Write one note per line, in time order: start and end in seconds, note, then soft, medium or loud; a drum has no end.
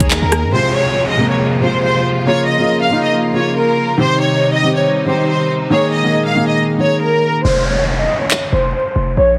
0.00 0.21 D#2 loud
0.00 0.50 D#3 medium
0.00 0.56 D#3 loud
0.00 0.52 G#3 medium
0.00 0.52 A#3 medium
0.00 0.56 A#3 medium
0.00 0.52 G#4 medium
0.00 0.56 G#4 loud
0.00 kick loud
0.00 closed hi-hat medium
0.11 0.51 A#4 medium
0.11 clap loud
0.22 0.45 D#2 loud
0.32 cross-stick loud
0.32 closed hi-hat medium
0.44 0.53 G2 loud
0.52 1.10 C3 medium
0.52 2.25 C3 medium
0.52 3.96 F3 medium
0.52 1.11 G#3 medium
0.52 2.25 G#3 medium
0.52 3.96 F4 medium
0.52 1.12 F4 loud
0.52 0.73 C5 loud
0.52 downlifter medium
0.75 1.06 C#5 medium
1.09 1.29 D#5 medium
1.17 1.56 C3 medium
1.17 1.57 G#3 medium
1.17 1.58 A#3 medium
1.30 1.39 C#5 medium
1.60 2.18 C3 medium
1.60 2.19 G#3 medium
1.60 2.20 F4 medium
1.60 1.82 C5 medium
1.83 2.03 C5 medium
2.25 2.55 C#3 medium
2.25 3.97 C#3 medium
2.25 3.97 A#3 medium
2.25 2.55 A#3 medium
2.25 2.56 F4 loud
2.25 2.47 C#5 loud
2.48 2.79 D#5 medium
2.58 2.87 C#3 medium
2.58 2.88 A#3 medium
2.58 2.88 F4 medium
2.81 3.01 F5 medium
2.90 3.29 C#3 medium
2.90 3.29 A#3 medium
2.90 3.30 D#4 medium
3.03 3.12 D#5 medium
3.33 3.91 C#3 medium
3.33 3.92 A#3 medium
3.33 3.93 F4 medium
3.33 3.54 C#5 medium
3.56 3.96 A#4 medium
3.98 4.57 C3 medium
3.98 5.70 C3 medium
3.98 4.56 D#3 loud
3.98 7.41 D#3 medium
3.98 5.70 G3 medium
3.98 7.41 D#4 medium
3.98 4.57 G4 loud
3.98 4.20 C5 loud
4.21 4.52 C#5 medium
4.54 4.74 D#5 medium
4.62 5.01 D#3 medium
4.62 5.02 C4 medium
4.62 5.03 G4 medium
4.75 4.85 C#5 medium
5.06 5.64 D#3 medium
5.06 5.65 C4 medium
5.06 5.65 G4 medium
5.06 5.27 C5 medium
5.28 5.48 C5 medium
5.70 7.43 A#2 medium
5.70 6.00 D#3 medium
5.70 7.43 G#3 medium
5.70 6.01 A#3 medium
5.70 6.01 G#4 loud
5.70 5.92 C#5 loud
5.93 6.24 D#5 medium
6.03 6.32 D#3 medium
6.03 6.33 A#3 medium
6.03 6.34 G#4 medium
6.27 6.47 F5 medium
6.35 6.74 D#3 medium
6.35 6.75 A#3 medium
6.35 6.76 G#4 medium
6.48 6.57 D#5 medium
6.78 7.36 D#3 medium
6.78 7.37 A#3 medium
6.78 7.38 G#4 medium
6.78 7.00 C#5 medium
7.01 7.42 A#4 medium
7.44 8.07 F1 loud
7.44 7.64 C5 loud
7.44 downlifter medium
7.66 7.97 C#5 medium
7.99 8.19 D#5 medium
8.21 8.30 C#5 medium
8.31 clap loud
8.52 8.73 F1 loud
8.52 8.72 C5 medium
8.74 8.94 C5 medium
8.96 9.16 F1 loud
9.17 9.39 A#1 loud
9.17 9.37 C#5 loud